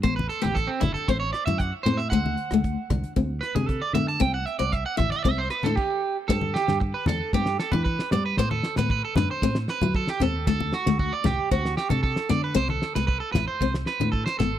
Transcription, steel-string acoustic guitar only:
X:1
M:4/4
L:1/16
Q:1/4=115
K:G
V:1 name="Steel-string acoustic guitar"
B,2 z B,2 z D2 C2 z E2 z C2 | A,2 z A,2 z D2 C2 z D2 z B,2 | C2 z C2 z E2 C2 z D2 z3 | B,2 z4 D2 B,2 z D2 z B,2 |
B,2 z B,2 z D2 C2 z E2 z C2 | A,2 z A,2 z3 C2 z D2 z B,2 | C2 z4 E2 C2 z D2 z B,2 |]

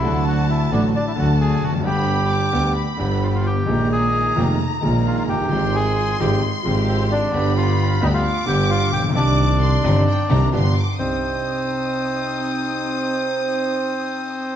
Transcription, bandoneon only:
X:1
M:4/4
L:1/16
Q:1/4=132
K:Cm
V:1 name="Bandoneon"
=E2 ^F2 E2 D2 D E F2 A2 F2 | G8 z4 F F G2- | G2 A4 G2 z4 F F G2- | G2 A4 G2 z4 C C D2- |
D2 F4 E F3 G2 F2 G2 | D12 z4 | C16- | C16 |]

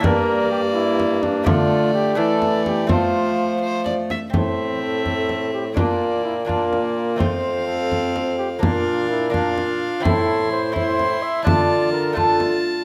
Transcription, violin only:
X:1
M:6/8
L:1/8
Q:3/8=84
K:Aphr
V:1 name="Violin"
d6 | d3 d3 | c3 c d e | e6 |
d3 d3 | f6 | f3 f3 | c'3 c'3 |
a3 a3 |]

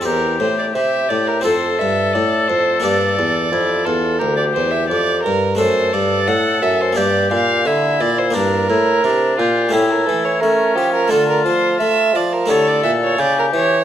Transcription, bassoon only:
X:1
M:4/4
L:1/8
Q:1/4=87
K:Gdor
V:1 name="Bassoon" clef=bass
E,, A,, C, A,, F,, G,, A,, F,, | G,, E,, F,, E,, D,, E,, F,, G,, | ^F,, G,, A,, F,, G,, B,, D, B,, | [K:Aphr] G,, A,, C, B,, A,, E, A, F, |
D, F, A, F, D, B,, ^C, E, |]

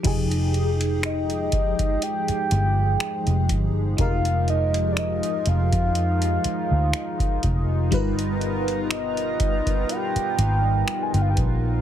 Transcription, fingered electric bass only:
X:1
M:4/4
L:1/16
Q:"Swing 16ths" 1/4=61
K:Fm
V:1 name="Fingered electric bass" clef=bass
F,,,6- F,,, z3 G,,,2 z F,,, G,,,2 | F,,,4- F,,, z F,,, F,,3 z =D,, z2 F,,,2 | G,,,6- G,,, z3 A,,,2 z G,,, ^A,,,2 |]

